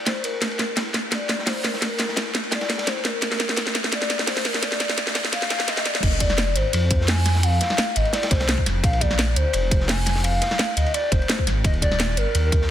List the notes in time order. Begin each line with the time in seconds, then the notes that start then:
0.06 C5, snare, closed hi-hat, ride
0.24 A#4, closed hi-hat, ride
0.42 A#4, snare, closed hi-hat, ride
0.51 ride
0.59 snare, closed hi-hat, ride
0.77 snare, closed hi-hat, ride
0.94 snare, closed hi-hat, ride
1.12 D5, snare, closed hi-hat, ride
1.29 snare, closed hi-hat, ride
1.39 snare
1.47 C5, snare, closed hi-hat, open hi-hat
1.64 A#4, snare, closed hi-hat, ride
1.74 snare
1.82 A#4, snare, closed hi-hat, ride
1.99 snare, closed hi-hat, ride
2.08 snare
2.16 snare, closed hi-hat, ride
2.35 snare, closed hi-hat, ride
2.44 ride
2.51 D5, snare, closed hi-hat, ride
2.61 snare, ride
2.69 snare, closed hi-hat, ride
2.78 snare, ride
2.87 C5, snare, closed hi-hat, ride
3.05 A#4, snare, closed hi-hat, ride
3.22 A#4, snare, closed hi-hat, ride
3.31 snare, ride
3.40 snare, closed hi-hat, ride
3.49 snare
3.56 snare, closed hi-hat, ride
3.67 snare
3.75 snare, closed hi-hat, ride
3.84 snare
3.92 D5, snare, closed hi-hat, ride
4.02 snare
4.10 snare, closed hi-hat, ride
4.19 snare
4.27 C5, snare, closed hi-hat, open hi-hat
4.37 snare
4.45 A#4, snare, closed hi-hat, ride
4.54 snare
4.62 D5, snare, closed hi-hat, ride
4.72 snare
4.80 snare, closed hi-hat, ride
4.89 snare
4.98 snare, closed hi-hat, ride
5.07 snare
5.15 snare, closed hi-hat, open hi-hat
5.24 snare
5.32 F5, snare, closed hi-hat, ride
5.42 snare
5.50 snare, closed hi-hat, ride
5.59 snare, ride
5.68 D#5, snare, closed hi-hat, ride
5.77 snare, ride
5.85 D5, snare, closed hi-hat, ride
5.95 snare
6.02 F1 D#5, kick, closed hi-hat, crash, ride
6.13 ride
6.20 D5, kick, closed hi-hat, ride
6.30 snare
6.38 snare, closed hi-hat, ride
6.55 G#1 C5, closed hi-hat, ride
6.73 F2, closed hi-hat, ride
6.91 F2, kick, closed hi-hat, ride
7.01 snare
7.07 G#5, snare, closed hi-hat, open hi-hat
7.26 snare, closed hi-hat, ride
7.35 snare
7.43 F5, closed hi-hat, ride
7.61 snare, closed hi-hat, ride
7.70 snare
7.78 snare, closed hi-hat, ride
7.96 G#1 D#5, closed hi-hat, ride
8.05 ride
8.13 D5, snare, closed hi-hat, ride
8.23 snare, ride
8.31 C2 C5, kick, snare, closed hi-hat, ride
8.40 snare, ride
8.48 C2, snare, closed hi-hat, ride
8.58 kick
8.66 F1, snare, closed hi-hat, ride
8.83 A#1 F5, kick, closed hi-hat, ride
8.93 ride
9.01 D5, kick, closed hi-hat, ride
9.11 snare
9.19 snare, closed hi-hat, ride
9.36 D2 C5, closed hi-hat, ride
9.53 F1, closed hi-hat, ride
9.71 F1, kick, closed hi-hat, ride
9.80 snare
9.88 G#5, snare, closed hi-hat, open hi-hat
10.06 snare, closed hi-hat, ride
10.15 snare
10.24 F5, closed hi-hat, ride
10.42 snare, closed hi-hat, ride
10.51 snare
10.59 snare, closed hi-hat, ride
10.77 D2 D#5, closed hi-hat, ride
10.86 ride
10.94 D5, closed hi-hat, ride
11.12 F1 C5, kick, closed hi-hat, ride
11.22 ride
11.29 snare, closed hi-hat, ride
11.39 kick
11.47 G#1, snare, closed hi-hat, ride
11.64 D#1 D#5, kick, closed hi-hat, ride
11.74 ride
11.82 D5, kick, closed hi-hat, ride
11.92 snare
11.99 snare, closed hi-hat, ride
12.17 G1 A#4, closed hi-hat, ride
12.35 D#2, closed hi-hat, ride
12.52 D#2, kick, closed hi-hat, ride
12.62 snare